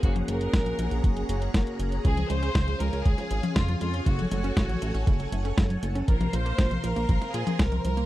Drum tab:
HH |xxxxxxxxxxxxxxxx|xxxxxxxxxxxxxxxx|xxxxxxxxxxxxxxxx|xxxxxxxxxxxxxxxx|
SD |----o-------o---|----o----o--o---|----o-------o---|----o----o--o---|
T1 |-o---o----------|-o---o-----o-o--|-o---o----------|-o---o-----o-o--|
BD |o---o---o---o---|o---o---o---o---|o---o---o---o---|o---o---o---o---|